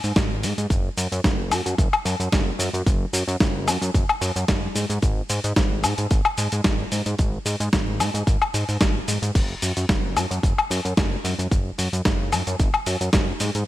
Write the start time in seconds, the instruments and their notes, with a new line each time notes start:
0.04 analog synth bass G#2, open hi-hat, cabasa
0.16 analog synth bass G#1, kick, snare, closed hi-hat, cabasa
0.43 analog synth bass G#2, open hi-hat, cabasa
0.58 analog synth bass G#2, closed hi-hat, cabasa
0.70 analog synth bass F#1, kick, closed hi-hat, cabasa
0.98 analog synth bass F#2, open hi-hat, cabasa
1.12 analog synth bass F#2, closed hi-hat, cabasa
1.24 analog synth bass F#1, kick, snare, closed hi-hat, cabasa
1.51 analog synth bass F#2, open hi-hat, cabasa, high woodblock
1.66 analog synth bass F#2, closed hi-hat, cabasa
1.78 analog synth bass F#1, kick, closed hi-hat, cabasa
1.93 high woodblock
2.05 analog synth bass F#2, open hi-hat, cabasa
2.20 analog synth bass F#2, closed hi-hat, cabasa
2.32 analog synth bass F#1, kick, snare, closed hi-hat, cabasa
2.59 analog synth bass F#2, open hi-hat, cabasa
2.74 analog synth bass F#2, closed hi-hat, cabasa
2.86 analog synth bass F#1, kick, closed hi-hat, cabasa
3.13 analog synth bass F#2, open hi-hat, cabasa
3.28 analog synth bass F#2, closed hi-hat, cabasa
3.40 analog synth bass F#1, kick, snare, closed hi-hat, cabasa
3.67 analog synth bass F#2, open hi-hat, cabasa, high woodblock
3.82 analog synth bass F#2, closed hi-hat, cabasa
3.94 analog synth bass F#1, kick, closed hi-hat, cabasa
4.09 high woodblock
4.21 analog synth bass F#2, open hi-hat, cabasa
4.36 analog synth bass F#2, closed hi-hat, cabasa
4.48 analog synth bass F#1, kick, snare, closed hi-hat, cabasa
4.75 analog synth bass G#2, open hi-hat, cabasa
4.90 analog synth bass G#2, closed hi-hat, cabasa
5.02 analog synth bass G#1, kick, closed hi-hat, cabasa
5.30 analog synth bass G#2, open hi-hat, cabasa
5.44 analog synth bass G#2, closed hi-hat, cabasa
5.56 analog synth bass G#1, kick, snare, closed hi-hat, cabasa
5.84 analog synth bass G#2, open hi-hat, cabasa, high woodblock
5.98 analog synth bass G#2, closed hi-hat, cabasa
6.11 analog synth bass G#1, kick, closed hi-hat, cabasa
6.25 high woodblock
6.38 analog synth bass G#2, open hi-hat, cabasa
6.52 analog synth bass G#2, closed hi-hat, cabasa
6.64 analog synth bass G#1, kick, snare, closed hi-hat, cabasa
6.92 analog synth bass G#2, open hi-hat, cabasa
7.06 analog synth bass G#2, closed hi-hat, cabasa
7.19 analog synth bass G#1, kick, closed hi-hat, cabasa
7.46 analog synth bass G#2, open hi-hat, cabasa
7.60 analog synth bass G#2, closed hi-hat, cabasa
7.73 analog synth bass G#1, kick, snare, closed hi-hat, cabasa
8.00 analog synth bass G#2, open hi-hat, cabasa, high woodblock
8.14 analog synth bass G#2, closed hi-hat, cabasa
8.27 analog synth bass G#1, kick, closed hi-hat, cabasa
8.42 high woodblock
8.54 analog synth bass G#2, open hi-hat, cabasa
8.69 analog synth bass G#2, open hi-hat, cabasa
8.81 analog synth bass G#1, kick, snare, closed hi-hat, cabasa
9.08 analog synth bass G#2, open hi-hat, cabasa
9.22 analog synth bass G#2, closed hi-hat, cabasa
9.35 analog synth bass F#1, kick, closed hi-hat, crash, cabasa
9.62 analog synth bass F#2, open hi-hat, cabasa
9.77 analog synth bass F#2, closed hi-hat, cabasa
9.89 analog synth bass F#1, kick, snare, closed hi-hat, cabasa
10.16 analog synth bass F#2, open hi-hat, cabasa, high woodblock
10.31 analog synth bass F#2, closed hi-hat, cabasa
10.43 analog synth bass F#1, kick, closed hi-hat, cabasa
10.58 high woodblock
10.70 analog synth bass F#2, open hi-hat, cabasa
10.85 analog synth bass F#2, closed hi-hat, cabasa
10.97 analog synth bass F#1, kick, snare, closed hi-hat, cabasa
11.25 analog synth bass F#2, open hi-hat, cabasa
11.39 analog synth bass F#2, closed hi-hat, cabasa
11.51 analog synth bass F#1, kick, closed hi-hat, cabasa
11.78 analog synth bass F#2, open hi-hat, cabasa
11.93 analog synth bass F#2, closed hi-hat, cabasa
12.05 analog synth bass F#1, kick, snare, closed hi-hat, cabasa
12.32 analog synth bass F#2, open hi-hat, cabasa, high woodblock
12.47 analog synth bass F#2, closed hi-hat, cabasa
12.59 analog synth bass F#1, kick, closed hi-hat, cabasa
12.74 high woodblock
12.86 analog synth bass F#2, open hi-hat, cabasa
13.01 analog synth bass F#2, closed hi-hat, cabasa
13.13 analog synth bass F#1, kick, snare, closed hi-hat, cabasa
13.40 analog synth bass G#2, open hi-hat, cabasa
13.55 analog synth bass G#2, closed hi-hat, cabasa